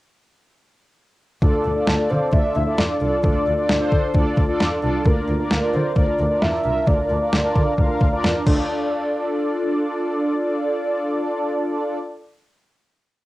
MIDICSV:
0, 0, Header, 1, 5, 480
1, 0, Start_track
1, 0, Key_signature, -1, "minor"
1, 0, Tempo, 454545
1, 1498, Time_signature, 4, 2, 24, 8
1, 13992, End_track
2, 0, Start_track
2, 0, Title_t, "Soft synth lead"
2, 0, Program_c, 0, 80
2, 1500, Note_on_c, 0, 69, 99
2, 2219, Note_on_c, 0, 72, 95
2, 2235, Note_off_c, 0, 69, 0
2, 2459, Note_on_c, 0, 74, 106
2, 2475, Note_off_c, 0, 72, 0
2, 2701, Note_on_c, 0, 76, 102
2, 2716, Note_off_c, 0, 74, 0
2, 2940, Note_on_c, 0, 74, 103
2, 2956, Note_off_c, 0, 76, 0
2, 3415, Note_off_c, 0, 74, 0
2, 3421, Note_on_c, 0, 74, 103
2, 4337, Note_off_c, 0, 74, 0
2, 5340, Note_on_c, 0, 70, 97
2, 6017, Note_off_c, 0, 70, 0
2, 6060, Note_on_c, 0, 72, 94
2, 6301, Note_on_c, 0, 74, 107
2, 6317, Note_off_c, 0, 72, 0
2, 6777, Note_on_c, 0, 76, 106
2, 6793, Note_off_c, 0, 74, 0
2, 7252, Note_off_c, 0, 76, 0
2, 7258, Note_on_c, 0, 74, 106
2, 8656, Note_off_c, 0, 74, 0
2, 13992, End_track
3, 0, Start_track
3, 0, Title_t, "Analog polysynth"
3, 0, Program_c, 1, 90
3, 1497, Note_on_c, 1, 62, 76
3, 1497, Note_on_c, 1, 65, 69
3, 1497, Note_on_c, 1, 69, 67
3, 1497, Note_on_c, 1, 74, 80
3, 1810, Note_off_c, 1, 62, 0
3, 1810, Note_off_c, 1, 65, 0
3, 1810, Note_off_c, 1, 69, 0
3, 1810, Note_off_c, 1, 74, 0
3, 1857, Note_on_c, 1, 62, 69
3, 1857, Note_on_c, 1, 65, 66
3, 1857, Note_on_c, 1, 69, 66
3, 1857, Note_on_c, 1, 74, 80
3, 2066, Note_off_c, 1, 62, 0
3, 2066, Note_off_c, 1, 65, 0
3, 2066, Note_off_c, 1, 69, 0
3, 2066, Note_off_c, 1, 74, 0
3, 2097, Note_on_c, 1, 62, 76
3, 2097, Note_on_c, 1, 69, 67
3, 2097, Note_on_c, 1, 74, 83
3, 2098, Note_on_c, 1, 65, 67
3, 2411, Note_off_c, 1, 62, 0
3, 2411, Note_off_c, 1, 65, 0
3, 2411, Note_off_c, 1, 69, 0
3, 2411, Note_off_c, 1, 74, 0
3, 2457, Note_on_c, 1, 69, 68
3, 2457, Note_on_c, 1, 76, 80
3, 2458, Note_on_c, 1, 62, 72
3, 2458, Note_on_c, 1, 65, 68
3, 2770, Note_off_c, 1, 69, 0
3, 2770, Note_off_c, 1, 76, 0
3, 2771, Note_off_c, 1, 62, 0
3, 2771, Note_off_c, 1, 65, 0
3, 2816, Note_on_c, 1, 62, 75
3, 2816, Note_on_c, 1, 65, 69
3, 2816, Note_on_c, 1, 69, 70
3, 2816, Note_on_c, 1, 74, 83
3, 3130, Note_off_c, 1, 62, 0
3, 3130, Note_off_c, 1, 65, 0
3, 3130, Note_off_c, 1, 69, 0
3, 3130, Note_off_c, 1, 74, 0
3, 3177, Note_on_c, 1, 69, 70
3, 3178, Note_on_c, 1, 62, 76
3, 3178, Note_on_c, 1, 65, 68
3, 3178, Note_on_c, 1, 74, 80
3, 3386, Note_off_c, 1, 62, 0
3, 3386, Note_off_c, 1, 69, 0
3, 3386, Note_off_c, 1, 74, 0
3, 3387, Note_off_c, 1, 65, 0
3, 3417, Note_on_c, 1, 62, 76
3, 3417, Note_on_c, 1, 65, 69
3, 3417, Note_on_c, 1, 69, 67
3, 3418, Note_on_c, 1, 74, 81
3, 3731, Note_off_c, 1, 62, 0
3, 3731, Note_off_c, 1, 65, 0
3, 3731, Note_off_c, 1, 69, 0
3, 3731, Note_off_c, 1, 74, 0
3, 3776, Note_on_c, 1, 74, 78
3, 3777, Note_on_c, 1, 62, 74
3, 3777, Note_on_c, 1, 65, 65
3, 3777, Note_on_c, 1, 69, 69
3, 3986, Note_off_c, 1, 62, 0
3, 3986, Note_off_c, 1, 65, 0
3, 3986, Note_off_c, 1, 69, 0
3, 3986, Note_off_c, 1, 74, 0
3, 4015, Note_on_c, 1, 65, 80
3, 4016, Note_on_c, 1, 69, 81
3, 4016, Note_on_c, 1, 72, 98
3, 4017, Note_on_c, 1, 62, 92
3, 4330, Note_off_c, 1, 62, 0
3, 4330, Note_off_c, 1, 65, 0
3, 4330, Note_off_c, 1, 69, 0
3, 4330, Note_off_c, 1, 72, 0
3, 4378, Note_on_c, 1, 62, 87
3, 4378, Note_on_c, 1, 65, 80
3, 4378, Note_on_c, 1, 69, 80
3, 4378, Note_on_c, 1, 74, 96
3, 4691, Note_off_c, 1, 62, 0
3, 4691, Note_off_c, 1, 65, 0
3, 4691, Note_off_c, 1, 69, 0
3, 4691, Note_off_c, 1, 74, 0
3, 4736, Note_on_c, 1, 62, 89
3, 4736, Note_on_c, 1, 74, 99
3, 4737, Note_on_c, 1, 65, 82
3, 4737, Note_on_c, 1, 69, 82
3, 5050, Note_off_c, 1, 62, 0
3, 5050, Note_off_c, 1, 65, 0
3, 5050, Note_off_c, 1, 69, 0
3, 5050, Note_off_c, 1, 74, 0
3, 5097, Note_on_c, 1, 62, 93
3, 5097, Note_on_c, 1, 69, 82
3, 5097, Note_on_c, 1, 74, 95
3, 5098, Note_on_c, 1, 65, 84
3, 5306, Note_off_c, 1, 62, 0
3, 5306, Note_off_c, 1, 69, 0
3, 5306, Note_off_c, 1, 74, 0
3, 5307, Note_off_c, 1, 65, 0
3, 5337, Note_on_c, 1, 62, 73
3, 5337, Note_on_c, 1, 65, 68
3, 5337, Note_on_c, 1, 70, 67
3, 5337, Note_on_c, 1, 74, 83
3, 5650, Note_off_c, 1, 62, 0
3, 5650, Note_off_c, 1, 65, 0
3, 5650, Note_off_c, 1, 70, 0
3, 5650, Note_off_c, 1, 74, 0
3, 5696, Note_on_c, 1, 70, 68
3, 5697, Note_on_c, 1, 65, 66
3, 5697, Note_on_c, 1, 74, 82
3, 5698, Note_on_c, 1, 62, 73
3, 5906, Note_off_c, 1, 62, 0
3, 5906, Note_off_c, 1, 65, 0
3, 5906, Note_off_c, 1, 70, 0
3, 5906, Note_off_c, 1, 74, 0
3, 5939, Note_on_c, 1, 62, 73
3, 5939, Note_on_c, 1, 65, 72
3, 5939, Note_on_c, 1, 70, 69
3, 5939, Note_on_c, 1, 74, 83
3, 6251, Note_off_c, 1, 62, 0
3, 6251, Note_off_c, 1, 65, 0
3, 6251, Note_off_c, 1, 70, 0
3, 6251, Note_off_c, 1, 74, 0
3, 6297, Note_on_c, 1, 62, 73
3, 6297, Note_on_c, 1, 70, 66
3, 6297, Note_on_c, 1, 74, 82
3, 6298, Note_on_c, 1, 65, 68
3, 6610, Note_off_c, 1, 70, 0
3, 6610, Note_off_c, 1, 74, 0
3, 6611, Note_off_c, 1, 62, 0
3, 6611, Note_off_c, 1, 65, 0
3, 6660, Note_on_c, 1, 62, 75
3, 6660, Note_on_c, 1, 70, 71
3, 6660, Note_on_c, 1, 74, 82
3, 6661, Note_on_c, 1, 65, 67
3, 6972, Note_off_c, 1, 62, 0
3, 6972, Note_off_c, 1, 65, 0
3, 6972, Note_off_c, 1, 70, 0
3, 6972, Note_off_c, 1, 74, 0
3, 7018, Note_on_c, 1, 76, 82
3, 7019, Note_on_c, 1, 62, 76
3, 7019, Note_on_c, 1, 65, 70
3, 7019, Note_on_c, 1, 70, 69
3, 7227, Note_off_c, 1, 62, 0
3, 7227, Note_off_c, 1, 65, 0
3, 7227, Note_off_c, 1, 70, 0
3, 7227, Note_off_c, 1, 76, 0
3, 7259, Note_on_c, 1, 62, 75
3, 7259, Note_on_c, 1, 70, 70
3, 7259, Note_on_c, 1, 74, 83
3, 7260, Note_on_c, 1, 65, 66
3, 7571, Note_off_c, 1, 62, 0
3, 7571, Note_off_c, 1, 70, 0
3, 7571, Note_off_c, 1, 74, 0
3, 7572, Note_off_c, 1, 65, 0
3, 7619, Note_on_c, 1, 65, 69
3, 7619, Note_on_c, 1, 70, 67
3, 7620, Note_on_c, 1, 62, 72
3, 7620, Note_on_c, 1, 74, 83
3, 7827, Note_off_c, 1, 65, 0
3, 7827, Note_off_c, 1, 70, 0
3, 7828, Note_off_c, 1, 62, 0
3, 7828, Note_off_c, 1, 74, 0
3, 7859, Note_on_c, 1, 62, 91
3, 7859, Note_on_c, 1, 70, 84
3, 7859, Note_on_c, 1, 74, 97
3, 7860, Note_on_c, 1, 65, 85
3, 8171, Note_off_c, 1, 74, 0
3, 8172, Note_off_c, 1, 62, 0
3, 8172, Note_off_c, 1, 65, 0
3, 8172, Note_off_c, 1, 70, 0
3, 8219, Note_on_c, 1, 77, 98
3, 8220, Note_on_c, 1, 62, 86
3, 8220, Note_on_c, 1, 65, 78
3, 8220, Note_on_c, 1, 70, 82
3, 8532, Note_off_c, 1, 62, 0
3, 8532, Note_off_c, 1, 65, 0
3, 8532, Note_off_c, 1, 70, 0
3, 8532, Note_off_c, 1, 77, 0
3, 8577, Note_on_c, 1, 62, 86
3, 8577, Note_on_c, 1, 65, 81
3, 8577, Note_on_c, 1, 70, 81
3, 8577, Note_on_c, 1, 74, 97
3, 8890, Note_off_c, 1, 62, 0
3, 8890, Note_off_c, 1, 70, 0
3, 8890, Note_off_c, 1, 74, 0
3, 8891, Note_off_c, 1, 65, 0
3, 8940, Note_on_c, 1, 62, 84
3, 8940, Note_on_c, 1, 65, 75
3, 8940, Note_on_c, 1, 69, 75
3, 8940, Note_on_c, 1, 74, 90
3, 12656, Note_off_c, 1, 65, 0
3, 12656, Note_off_c, 1, 74, 0
3, 12657, Note_off_c, 1, 62, 0
3, 12657, Note_off_c, 1, 69, 0
3, 13992, End_track
4, 0, Start_track
4, 0, Title_t, "Double bass"
4, 0, Program_c, 2, 43
4, 1499, Note_on_c, 2, 38, 107
4, 1583, Note_off_c, 2, 38, 0
4, 1739, Note_on_c, 2, 38, 89
4, 1824, Note_off_c, 2, 38, 0
4, 1979, Note_on_c, 2, 38, 97
4, 2063, Note_off_c, 2, 38, 0
4, 2218, Note_on_c, 2, 50, 95
4, 2302, Note_off_c, 2, 50, 0
4, 2456, Note_on_c, 2, 38, 97
4, 2541, Note_off_c, 2, 38, 0
4, 2698, Note_on_c, 2, 38, 108
4, 2783, Note_off_c, 2, 38, 0
4, 2939, Note_on_c, 2, 40, 84
4, 3023, Note_off_c, 2, 40, 0
4, 3178, Note_on_c, 2, 36, 90
4, 3263, Note_off_c, 2, 36, 0
4, 3418, Note_on_c, 2, 38, 107
4, 3503, Note_off_c, 2, 38, 0
4, 3658, Note_on_c, 2, 38, 93
4, 3743, Note_off_c, 2, 38, 0
4, 3900, Note_on_c, 2, 38, 93
4, 3984, Note_off_c, 2, 38, 0
4, 4137, Note_on_c, 2, 50, 91
4, 4222, Note_off_c, 2, 50, 0
4, 4377, Note_on_c, 2, 38, 98
4, 4462, Note_off_c, 2, 38, 0
4, 4616, Note_on_c, 2, 38, 99
4, 4701, Note_off_c, 2, 38, 0
4, 4862, Note_on_c, 2, 40, 89
4, 4946, Note_off_c, 2, 40, 0
4, 5101, Note_on_c, 2, 36, 93
4, 5185, Note_off_c, 2, 36, 0
4, 5340, Note_on_c, 2, 38, 110
4, 5424, Note_off_c, 2, 38, 0
4, 5581, Note_on_c, 2, 38, 97
4, 5665, Note_off_c, 2, 38, 0
4, 5821, Note_on_c, 2, 38, 94
4, 5905, Note_off_c, 2, 38, 0
4, 6062, Note_on_c, 2, 50, 96
4, 6146, Note_off_c, 2, 50, 0
4, 6298, Note_on_c, 2, 38, 100
4, 6382, Note_off_c, 2, 38, 0
4, 6541, Note_on_c, 2, 38, 93
4, 6625, Note_off_c, 2, 38, 0
4, 6781, Note_on_c, 2, 40, 95
4, 6865, Note_off_c, 2, 40, 0
4, 7020, Note_on_c, 2, 36, 86
4, 7104, Note_off_c, 2, 36, 0
4, 7259, Note_on_c, 2, 38, 108
4, 7344, Note_off_c, 2, 38, 0
4, 7499, Note_on_c, 2, 38, 92
4, 7584, Note_off_c, 2, 38, 0
4, 7739, Note_on_c, 2, 38, 97
4, 7824, Note_off_c, 2, 38, 0
4, 7979, Note_on_c, 2, 50, 96
4, 8063, Note_off_c, 2, 50, 0
4, 8217, Note_on_c, 2, 38, 97
4, 8301, Note_off_c, 2, 38, 0
4, 8457, Note_on_c, 2, 38, 97
4, 8542, Note_off_c, 2, 38, 0
4, 8699, Note_on_c, 2, 40, 97
4, 8783, Note_off_c, 2, 40, 0
4, 8940, Note_on_c, 2, 38, 95
4, 9025, Note_off_c, 2, 38, 0
4, 13992, End_track
5, 0, Start_track
5, 0, Title_t, "Drums"
5, 1498, Note_on_c, 9, 36, 106
5, 1604, Note_off_c, 9, 36, 0
5, 1977, Note_on_c, 9, 38, 106
5, 2082, Note_off_c, 9, 38, 0
5, 2456, Note_on_c, 9, 36, 92
5, 2562, Note_off_c, 9, 36, 0
5, 2938, Note_on_c, 9, 38, 99
5, 3044, Note_off_c, 9, 38, 0
5, 3418, Note_on_c, 9, 36, 104
5, 3524, Note_off_c, 9, 36, 0
5, 3898, Note_on_c, 9, 38, 107
5, 4003, Note_off_c, 9, 38, 0
5, 4138, Note_on_c, 9, 36, 80
5, 4244, Note_off_c, 9, 36, 0
5, 4377, Note_on_c, 9, 36, 92
5, 4482, Note_off_c, 9, 36, 0
5, 4617, Note_on_c, 9, 36, 81
5, 4722, Note_off_c, 9, 36, 0
5, 4862, Note_on_c, 9, 38, 95
5, 4967, Note_off_c, 9, 38, 0
5, 5340, Note_on_c, 9, 36, 103
5, 5445, Note_off_c, 9, 36, 0
5, 5818, Note_on_c, 9, 38, 109
5, 5924, Note_off_c, 9, 38, 0
5, 6297, Note_on_c, 9, 36, 91
5, 6403, Note_off_c, 9, 36, 0
5, 6782, Note_on_c, 9, 38, 99
5, 6887, Note_off_c, 9, 38, 0
5, 7259, Note_on_c, 9, 36, 103
5, 7365, Note_off_c, 9, 36, 0
5, 7739, Note_on_c, 9, 38, 111
5, 7844, Note_off_c, 9, 38, 0
5, 7979, Note_on_c, 9, 36, 78
5, 8084, Note_off_c, 9, 36, 0
5, 8217, Note_on_c, 9, 36, 91
5, 8323, Note_off_c, 9, 36, 0
5, 8457, Note_on_c, 9, 36, 83
5, 8563, Note_off_c, 9, 36, 0
5, 8702, Note_on_c, 9, 38, 99
5, 8808, Note_off_c, 9, 38, 0
5, 8939, Note_on_c, 9, 36, 107
5, 8940, Note_on_c, 9, 49, 86
5, 9045, Note_off_c, 9, 36, 0
5, 9046, Note_off_c, 9, 49, 0
5, 13992, End_track
0, 0, End_of_file